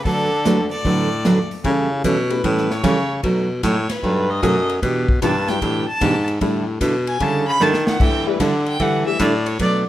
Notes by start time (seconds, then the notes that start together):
0.05 D3 F#3 A3 D4 F#4 A4 B4, kick, open hi-hat
0.45 D3 F#3 A3 B3 D4 F#4 A4 B4, snare, closed hi-hat
0.71 A4 D5, open hi-hat
0.85 A2 D3 F#3 A3 D4 F#4 B4, kick, open hi-hat
1.25 D3 F#3 A3 D4 F#4 B4, snare, closed hi-hat
1.51 open hi-hat
1.64 C#3 E3 G3 A3 C#4 E4 G4 A4, kick, ride
2.04 B2 E3 G3 C#4 E4 A4 C#5, kick, hi-hat pedal, ride
2.30 A3 C#4 E4 G4 B4, ride
2.44 A2 E3 G3 C#4 E4 A4, kick, ride
2.57 snare
2.70 C#5, snare
2.83 C#3 E3 G3 C#4 E4 A4, kick, hi-hat pedal, ride
3.23 B2 F#3 A3 D#4 F#4, kick, ride
3.63 A2 B2 F#3 A3 D#4 F#4 C#5, kick, hi-hat pedal, ride
3.89 A2 B4, snare, ride
4.03 G2 B2 F#3 A3 D#4 F#4, kick
4.30 D#5
4.42 F#2 B2 F#3 A3 B3 D#4 F#4 A4, kick, hi-hat pedal, ride
4.69 ride
4.82 B2 E3 B3 D4 G4, kick, ride
5.09 kick
5.22 G2 B2 E3 F#3 A#3 B3 C#4 D4 D#4 F4 G4 A5, kick, hi-hat pedal, ride
5.48 F#3 G3 B3 D4 E4 G5, snare, ride
5.61 A2 B2 E3 B3 D4 G4, kick, ride
5.88 A5
6.01 G#2 B2 E3 B3 D4 G4, kick, hi-hat pedal, ride
6.28 ride
6.41 A2 D3 G3 A3 D4 E4 G4 A4, kick, ride
6.81 B2 D3 G3 D4 E4 A4, kick, hi-hat pedal, ride
7.07 G#5, ride
7.20 C#3 D3 G3 D4 E4 A4 A5, kick, ride
7.48 B5
7.60 D3 D#3 G3 D4 E4 A4 A5, snare, hi-hat pedal
7.73 snare
7.87 F#5, snare
8.00 D3 E3 G3 D4 E4 A4 G5, kick, crash
8.27 G3 A3 D4 E4 G4 B4
8.40 D3 G3 D4 E4 A4 D5, kick, hi-hat pedal, ride
8.66 G5, ride
8.80 D3 E3 G3 D4 E4 A4 F#5, kick, ride
9.06 G3 A3 D4 E4 G4 E5
9.19 A2 D3 G3 D4 E4 A4 D5, kick, hi-hat pedal, ride
9.46 C#5, ride
9.59 B2 F#3 A3 D4 F#4 D5, kick, ride